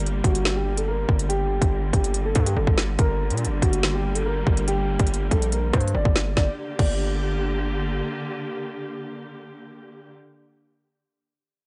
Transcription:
0.00 0.22 G1 loud
0.00 6.33 D3 medium
0.00 2.95 G3 medium
0.00 2.95 A#3 medium
0.00 0.20 A#4 medium
0.06 closed hi-hat medium
0.24 1.05 G1 loud
0.24 0.54 F#4 medium
0.24 kick loud
0.24 closed hi-hat medium
0.35 closed hi-hat medium
0.45 snare loud
0.56 0.74 G4 medium
0.77 0.86 A4 medium
0.77 closed hi-hat medium
0.88 1.27 A#4 medium
1.09 1.59 G1 loud
1.09 kick loud
1.19 closed hi-hat medium
1.29 1.89 G4 loud
1.29 closed hi-hat medium
1.62 1.92 G1 loud
1.62 kick loud
1.62 closed hi-hat medium
1.93 2.34 G1 loud
1.93 2.23 G4 medium
1.93 kick loud
1.93 closed hi-hat medium
2.04 closed hi-hat medium
2.14 closed hi-hat medium
2.25 2.43 A4 medium
2.35 2.56 G2 loud
2.35 kick medium
2.35 closed hi-hat medium
2.46 2.55 G4 medium
2.46 closed hi-hat medium
2.56 2.67 G1 loud
2.56 2.75 A4 medium
2.67 2.98 G1 loud
2.67 kick loud
2.78 snare loud
2.99 3.32 G1 loud
2.99 6.34 G3 medium
2.99 6.34 A#3 medium
2.99 3.59 A#4 loud
2.99 kick loud
2.99 closed hi-hat medium
3.30 3.48 A#2 loud
3.30 closed hi-hat medium
3.37 closed hi-hat medium
3.45 3.61 G1 loud
3.45 closed hi-hat medium
3.62 4.43 G1 loud
3.62 3.92 F#4 medium
3.62 kick loud
3.62 closed hi-hat medium
3.73 closed hi-hat medium
3.83 snare loud
3.94 4.12 G4 medium
4.15 4.24 A4 medium
4.15 closed hi-hat medium
4.26 4.65 A#4 medium
4.47 4.97 G1 loud
4.47 kick loud
4.57 closed hi-hat medium
4.68 5.27 G4 loud
4.68 closed hi-hat medium
4.99 5.30 G1 loud
4.99 kick loud
4.99 closed hi-hat medium
5.07 closed hi-hat medium
5.14 closed hi-hat medium
5.31 5.72 A#1 loud
5.31 5.50 A4 medium
5.31 kick loud
5.31 closed hi-hat medium
5.42 closed hi-hat medium
5.52 5.71 A#4 medium
5.52 closed hi-hat medium
5.73 5.94 G2 loud
5.73 5.92 C5 medium
5.73 kick medium
5.73 cross-stick medium
5.73 closed hi-hat soft
5.80 closed hi-hat medium
5.88 closed hi-hat medium
5.95 6.05 G1 loud
5.95 6.35 D5 medium
6.05 6.36 G1 loud
6.05 kick loud
6.16 snare loud
6.37 6.49 G1 loud
6.37 10.12 D3 medium
6.37 10.12 A#3 medium
6.37 10.12 G4 medium
6.37 6.49 D5 medium
6.37 kick loud
6.37 snare medium
6.79 8.02 G1 loud
6.79 7.60 D5 medium
6.79 kick loud
6.79 crash medium

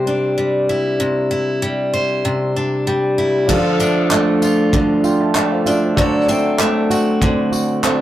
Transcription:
0.00 0.99 C3 medium
0.00 0.36 G3 medium
0.00 0.68 E4 medium
0.00 1.92 C5 medium
0.07 2.56 D4 soft
0.38 1.61 G3 soft
0.69 1.30 E4 soft
1.00 2.24 C3 medium
1.31 3.17 E4 medium
1.62 2.86 G3 medium
1.94 3.49 C5 medium
2.25 3.56 C3 medium
2.56 3.80 D4 soft
2.87 3.56 G3 medium
3.18 3.56 E4 medium
3.46 4.73 D3 medium
3.46 5.96 F3 medium
3.46 5.92 D4 medium
3.46 5.93 F4 medium
3.46 4.41 F4 medium
3.46 5.01 A4 medium
3.46 5.98 A4 medium
3.46 kick medium
3.46 crash medium
3.50 5.02 F5 medium
3.79 6.27 A3 soft
3.79 5.66 D4 medium
3.79 tambourine medium
4.11 5.36 A3 medium
4.11 4.73 D4 medium
4.11 clap loud
4.42 5.03 F4 medium
4.42 6.04 F4 medium
4.42 tambourine medium
4.73 5.98 D3 medium
4.73 5.35 D4 medium
4.73 kick loud
5.04 5.65 F4 medium
5.04 5.20 G5 soft
5.04 5.20 C6 medium
5.04 tambourine medium
5.21 5.34 E5 medium
5.21 5.34 A5 medium
5.35 6.60 A3 medium
5.35 6.59 D4 medium
5.35 5.52 D5 soft
5.35 5.51 G5 medium
5.35 clap loud
5.52 5.66 C5 medium
5.52 5.65 F5 medium
5.66 6.29 D4 medium
5.66 5.97 F4 medium
5.66 5.83 A4 medium
5.66 5.82 E5 medium
5.66 tambourine medium
5.83 5.96 C5 soft
5.83 6.13 F5 medium
5.95 7.22 D3 medium
5.95 8.01 F#3 medium
5.95 7.79 D4 medium
5.95 6.89 F#4 medium
5.95 7.80 A4 medium
5.95 7.80 C5 medium
5.95 kick medium
5.99 8.01 A4 medium
5.99 7.81 F#5 medium
6.28 8.01 A3 medium
6.28 8.01 C4 medium
6.28 tambourine medium
6.59 7.83 A3 medium
6.59 7.20 C4 medium
6.59 clap loud
6.90 7.51 F#4 medium
6.90 8.01 F#4 medium
6.90 tambourine medium
7.21 8.01 D3 medium
7.21 7.82 C4 medium
7.21 kick loud
7.52 8.01 F#4 medium
7.52 tambourine medium
7.82 8.01 A3 medium
7.82 8.01 C4 medium
7.82 8.01 D4 medium
7.82 8.01 A4 medium
7.82 8.01 C5 soft
7.82 8.01 F#5 medium
7.82 clap loud

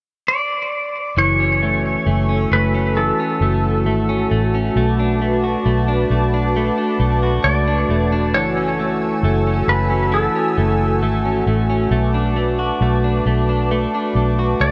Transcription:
0.28 1.18 D5 medium
1.17 1.96 F#1 medium
1.17 2.96 E3 medium
1.17 8.30 F#4 medium
1.17 4.72 A4 medium
1.17 2.56 C#5 medium
1.17 2.95 G#5 medium
1.17 4.72 E6 medium
1.40 2.28 C#4 soft
1.63 2.06 A3 soft
2.06 2.46 F#1 medium
2.06 2.52 A3 medium
2.29 2.73 C#4 soft
2.51 3.11 F#1 medium
2.51 3.42 A3 medium
2.51 2.98 B4 medium
2.74 3.18 C#4 medium
2.96 4.85 E3 medium
2.96 4.27 A4 medium
2.96 8.30 A5 medium
3.20 4.08 C#4 soft
3.41 3.86 F#1 medium
3.41 3.86 A3 medium
3.86 4.25 G#1 medium
3.86 4.31 A3 medium
4.09 4.53 C#4 medium
4.31 4.70 A1 medium
4.31 4.76 A3 medium
4.55 4.85 C#4 medium
4.76 5.54 B1 medium
4.76 5.21 A3 medium
4.76 8.30 B4 medium
4.76 8.30 D6 medium
4.99 5.87 D4 soft
5.22 5.65 A3 medium
5.44 7.22 F#4 medium
5.66 6.05 B1 loud
5.66 6.11 A3 medium
5.88 6.33 D4 medium
6.10 6.69 B1 medium
6.10 6.56 A3 medium
6.34 6.77 D4 medium
6.56 6.99 A3 medium
6.78 7.66 D4 medium
7.00 7.39 B1 medium
7.00 7.44 A3 soft
7.23 10.15 F#4 soft
7.44 7.83 C#2 medium
7.44 7.90 A3 medium
7.44 8.34 D5 medium
7.68 8.11 D4 medium
7.89 8.34 E1 medium
7.89 8.79 A3 medium
8.12 8.43 D4 medium
8.34 9.12 F#1 medium
8.34 10.11 E3 medium
8.34 14.71 F#4 medium
8.34 11.88 A4 medium
8.34 9.69 C#5 loud
8.34 11.89 G#5 medium
8.34 11.89 E6 medium
8.57 9.46 C#4 medium
8.80 9.24 A3 medium
9.23 9.62 F#1 loud
9.23 9.69 A3 medium
9.47 9.89 C#4 soft
9.68 10.27 F#1 medium
9.68 10.57 A3 medium
9.68 10.10 B4 medium
9.90 10.34 C#4 medium
10.12 12.00 E3 medium
10.12 11.44 A4 medium
10.35 11.24 C#4 soft
10.57 11.02 F#1 medium
10.57 11.02 A3 medium
11.02 11.42 G#1 medium
11.02 11.47 A3 medium
11.25 11.69 C#4 medium
11.46 11.86 A1 medium
11.46 11.91 A3 medium
11.70 12.01 C#4 medium
11.91 12.70 B1 medium
11.91 12.36 A3 medium
11.91 14.71 B4 medium
11.91 14.71 A5 medium
11.91 14.71 D6 medium
12.14 13.03 D4 medium
12.36 12.81 A3 medium
12.59 14.39 F#4 medium
12.81 13.20 B1 medium
12.81 13.26 A3 medium
13.04 13.48 D4 soft
13.26 13.85 B1 medium
13.26 13.71 A3 soft
13.49 13.93 D4 soft
13.71 14.16 A3 medium
13.94 14.71 D4 soft
14.15 14.55 B1 medium
14.15 14.61 A3 soft
14.39 14.71 F#4 soft
14.60 14.71 C#2 medium
14.60 14.71 A3 medium
14.60 14.71 D5 medium

